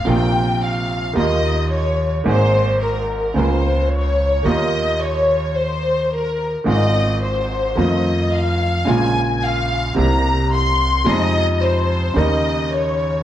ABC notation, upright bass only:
X:1
M:4/4
L:1/8
Q:1/4=109
K:Ebmix
V:1 name="Upright bass" clef=bass
B,,,4 E,,4 | A,,,4 D,,4 | E,,8 | A,,,4 F,,4 |
B,,,4 C,,4 | F,,4 E,,4 |]